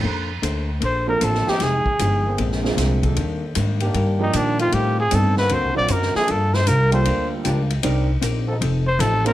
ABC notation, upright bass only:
X:1
M:4/4
L:1/8
Q:"Swing" 1/4=154
K:Bb
V:1 name="Upright bass" clef=bass
F,,2 D,,2 B,,,2 A,,, z | F,,, z G,,,2 B,,,2 C,,2 | E,,2 _A,,2 G,,2 B,,2 | A,,2 G,,2 (3D,, C,, ^A,,, ^F,, z |
G,,2 C,,2 D,,2 _D,,2 | C,,2 B,,,2 F,,,2 A,,,2 |]